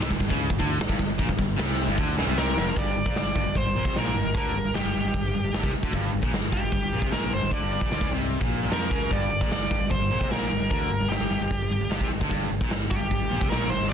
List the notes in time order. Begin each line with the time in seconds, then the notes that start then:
0.00 C3, snare, open hi-hat
0.09 G1 G2, kick
0.19 G1 G2, kick, open hi-hat
0.28 C#2 C#3, kick
0.41 open hi-hat
0.48 G1 G2, kick
0.58 D2 D3, kick, open hi-hat
0.77 G1 G2, snare, open hi-hat
0.89 G1 G2, kick
0.98 G1 G2, kick, open hi-hat
1.19 A#1 A#2, kick, open hi-hat
1.29 G1 G2, kick
1.38 G1 G2, kick, open hi-hat
1.57 C2 C3, snare, open hi-hat
1.79 open hi-hat
1.88 G1 G2
1.98 D2 D3, kick
2.18 C#2 C#3, snare
2.27 C2 C3
2.38 A#4, snare
2.57 F1 F2, snare
2.76 G1 G2 D5, kick, open hi-hat
2.97 G1 G2
3.06 A#1 A#2, kick
3.15 G1 G2 D5, snare, open hi-hat
3.36 G1 G2, kick
3.46 G1 G2
3.55 G1 G2 C5, kick, open hi-hat
3.65 G1 G2
3.75 A#1 A#2
3.85 C2 C3, kick, snare
3.95 A#1 A#2 A#4, snare, open hi-hat
4.15 G1 G2
4.24 G1 G2
4.35 D2 D3 A#4, kick, open hi-hat
4.54 G1 G2
4.65 G1 G2
4.74 G1 G2 G4, snare, open hi-hat
4.85 G1 G2
4.94 G1 G2
5.05 G1 G2
5.14 G1 G2, kick, open hi-hat
5.35 G1 G2
5.44 G1 G2
5.53 G1 G2, snare, open hi-hat
5.63 C2 C3, kick
5.73 G1 G2
5.83 D2 D3, kick
5.93 G1 G2, kick, open hi-hat
6.12 G1 G2
6.21 A#1 A#2, kick
6.32 G1 G2, snare, open hi-hat
6.52 G1 G2 G4, kick
6.63 G1 G2
6.72 G1 G2, kick, open hi-hat
6.83 G1 G2
6.93 A#1 A#2
7.02 C2 C3, kick
7.11 A#1 A#2 A#4, snare, open hi-hat
7.31 G1 G2 C5
7.41 G1 G2
7.50 D2 D3 D5, kick, open hi-hat
7.61 G1 G2
7.73 D5
7.80 A#1 A#2, kick
7.91 D2 D3, snare, open hi-hat
8.01 C#2 C#3, kick
8.11 C2 C3
8.32 open hi-hat
8.40 A#1 A#2, kick
8.63 snare
8.71 F2 F3 A#4, snare, open hi-hat
8.90 C#2 C#3, kick
9.10 G1 G2 D5, kick, open hi-hat
9.31 G1 G2
9.41 A#1 A#2, kick
9.51 G1 G2 D5, snare, open hi-hat
9.71 G1 G2, kick
9.79 G1 G2
9.90 G1 G2 C5, kick, open hi-hat
10.00 G1 G2
10.10 A#1 A#2
10.21 C2 C3, kick
10.29 A#1 A#2 A#4, snare, open hi-hat
10.51 G1 G2
10.60 G1 G2
10.71 D2 D3 A#4, kick, open hi-hat
10.90 G1 G2
11.00 G1 G2
11.09 G1 G2 G4, snare, open hi-hat
11.20 G1 G2
11.30 G1 G2
11.40 G1 G2
11.50 G1 G2, kick, open hi-hat
11.70 G1 G2
11.80 G1 G2
11.89 G1 G2, snare, open hi-hat
12.01 C2 C3, kick
12.10 G1 G2
12.20 D2 D3, kick, snare
12.29 G1 G2, kick, open hi-hat
12.50 G1 G2
12.61 A#1 A#2, kick
12.70 G1 G2, snare, open hi-hat
12.89 G1 G2 G4, kick
13.00 G1 G2
13.10 G1 G2, kick, open hi-hat
13.19 G1 G2
13.29 A#1 A#2
13.39 C2 C3, kick, snare
13.49 A#1 A#2 A#4, snare, open hi-hat
13.70 G1 G2 C5
13.81 G1 G2, snare
13.90 D5